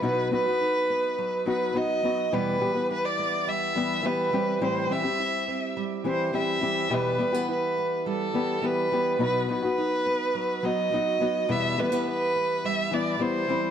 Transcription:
<<
  \new Staff \with { instrumentName = "Violin" } { \time 4/4 \key e \minor \tempo 4 = 105 b'8 b'2 b'8 dis''4 | b'4 b'16 d''8. e''4 b'4 | c''8 e''4. r8 c''8 e''4 | b'4 b'4 a'4 b'4 |
b'8 b'2 dis''4. | e''8 b'8 b'4 e''8 d''8 c''4 | }
  \new Staff \with { instrumentName = "Nylon-string guitar" } { \time 4/4 \key e \minor <b, fis b dis' fis'>8 <fis b dis' fis'>16 <b dis' fis'>4.~ <b dis' fis'>16 <fis b dis' fis'>8 <fis b dis' fis'>8 <fis b dis' fis'>8 | <e, b, e g b g'>8 <e g b g'>16 <e g b g'>4.~ <e g b g'>16 <e g b g'>8 <e g b g'>8 <e g c' g'>8 | <a, e g c' g'>8 <e g c' g'>16 <g c' g'>4.~ <g c' g'>16 <e g c' g'>8 <e g c' g'>8 <e g c' g'>8 | <e, b, e g b g'>8 <e g b g'>16 <e g b g'>4.~ <e g b g'>16 <e g b g'>8 <e g b g'>8 <e g b g'>8 |
<b, fis b dis' fis'>8 <fis b dis' fis'>16 <b dis' fis'>4.~ <b dis' fis'>16 <fis b dis' fis'>8 <fis b dis' fis'>8 <fis b dis' fis'>8 | <e, b, e g b e'>8 <e g b e'>16 <e g b e'>4.~ <e g b e'>16 <e g b e'>8 <e g b e'>8 <e g c' e'>8 | }
  \new Staff \with { instrumentName = "Steel-string acoustic guitar" } { \time 4/4 \key e \minor fis8 b8 dis'8 b8 fis8 dis'8 b8 fis8 | g8 b8 e'8 b8 g8 e'8 b8 g8 | g8 c'8 e'8 c'8 g8 e'8 c'8 g8 | g8 a16 b16 e'8 b8 g8 e'8 b8 g8 |
fis8 b8 dis'8 b8 fis8 dis'8 b8 fis8 | g8 a16 b16 e'8 b8 g8 e'4 g8 | }
>>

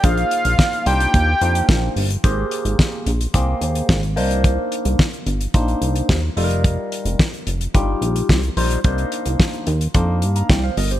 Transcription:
<<
  \new Staff \with { instrumentName = "Analog synth lead" } { \time 4/4 \key c \minor \tempo 4 = 109 f''4. g''2 r8 | r1 | r1 | r1 |
r1 | }
  \new Staff \with { instrumentName = "Tine electric piano" } { \time 4/4 \key c \minor << { r1 | r1 | r1 | r1 |
r2 r8. <f'' bes''>16 <d'' g''>16 <c'' f''>16 <bes' ees''>16 <g' c''>16 | } \\ { <bes ees' f' aes' c''>4. <bes d' ees' f' c''>4 <bes d' ees' f' c''>4 r8 | <bes g' aes' c''>4. r8 <bes g' aes' c''>4 r8 <bes d' ees' c''>8~ | <bes d' ees' c''>4 r4 <bes d' ees' c''>4 r8 <g ees' f' a' bes'>8~ | <g ees' f' a' bes'>4 r4 <g ees' f' g'>4 r8 <g ees' f' c''>8 |
<bes d' ees' c''>4. r8 <bes d' ees' c''>4 r4 | } >> }
  \new Staff \with { instrumentName = "Analog synth bass" } { \clef bass \time 4/4 \key c \minor bes,,8 r16 bes,,16 r8 c,8 ees,8 f,8 bes,,8 g,,8 | aes,,8 r16 aes,,16 r8 bes,,8 c,8 ees,8 aes,,8 c,8~ | c,8 r16 c,16 r8 g,,8 bes,,8 c,8 ees,8 f,,8~ | f,,8 r16 f,,16 r8 f,,8 g,,8 bes,,8 c,8 bes,,8 |
c,8 r16 c,16 r8 ees,8 f,8 g,8 c,8 g,,8 | }
  \new DrumStaff \with { instrumentName = "Drums" } \drummode { \time 4/4 <hh bd>16 hh16 hh16 hh16 <bd sn>16 hh16 hh16 hh16 <hh bd>8 hh16 hh16 <bd sn>8 hho16 hh16 | <hh bd>8 hh16 hh16 <bd sn>8 hh16 hh16 <hh bd>8 hh16 hh16 <bd sn>16 hh16 hho16 hh16 | <hh bd>8 hh16 hh16 <bd sn>16 hh16 hh16 hh16 <hh bd>16 hh16 hh16 hh16 <bd sn>8 hho16 hh16 | <hh bd>8 hh16 hh16 <bd sn>16 hh16 hh16 hh16 <hh bd>8 hh16 hh16 <bd sn>16 hh16 hho16 hh16 |
<hh bd>16 hh16 hh16 hh16 <bd sn>16 hh16 hh16 hh16 <hh bd>8 hh16 hh16 <bd sn>8 hho16 hh16 | }
>>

